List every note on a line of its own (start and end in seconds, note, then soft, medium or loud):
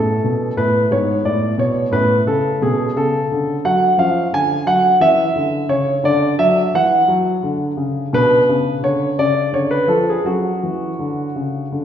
0.00 0.17 A2 soft
0.00 0.86 C#4 soft
0.00 0.57 A4 medium
0.24 0.50 B2 soft
0.57 0.83 A2 soft
0.57 0.91 B4 medium
0.90 1.18 G#2 soft
0.90 1.89 B3 soft
0.90 1.25 C#5 medium
1.24 1.51 A2 soft
1.24 1.54 D5 medium
1.58 1.85 B2 soft
1.58 1.88 C#5 medium
1.91 2.19 A2 soft
1.91 3.92 C#4 soft
1.91 2.21 B4 medium
2.26 2.54 C#3 soft
2.26 2.61 A4 medium
2.62 2.88 B2 soft
2.62 2.96 G#4 medium
2.96 3.23 C#3 soft
2.96 3.54 A4 medium
3.32 3.57 D3 soft
3.65 3.91 F#3 soft
3.65 3.93 F#5 medium
3.98 4.24 F3 soft
3.98 4.96 C#4 soft
3.98 4.27 F5 medium
4.33 4.59 D3 soft
4.33 4.62 G#5 medium
4.66 4.93 F#3 soft
4.66 4.95 F#5 medium
5.00 5.27 E3 soft
5.00 5.99 C#4 soft
5.00 5.69 E5 medium
5.36 5.62 D3 soft
5.69 5.96 C#3 soft
5.69 5.98 C#5 medium
6.03 6.31 D3 medium
6.03 8.08 D4 soft
6.03 6.33 D5 medium
6.39 6.66 F#3 soft
6.39 6.68 E5 medium
6.74 7.01 E3 soft
6.74 7.08 F#5 medium
7.08 7.35 F#3 medium
7.43 7.70 D3 soft
7.77 8.05 C#3 soft
8.13 8.40 B2 medium
8.13 9.14 D4 soft
8.13 8.73 B4 medium
8.49 8.76 C#3 soft
8.83 9.11 D3 soft
8.83 9.18 C#5 medium
9.18 9.46 C#3 soft
9.18 10.21 C#4 soft
9.18 9.48 D5 medium
9.52 9.81 D3 soft
9.52 9.71 C#5 medium
9.71 9.89 B4 medium
9.88 10.17 F3 soft
9.88 10.07 A4 medium
10.09 10.26 G#4 medium
10.24 10.54 F#3 soft
10.24 11.85 C#4 soft
10.24 11.85 F#4 medium
10.63 10.92 E3 soft
10.99 11.28 D3 soft
11.36 11.64 C#3 soft
11.72 11.85 D3 soft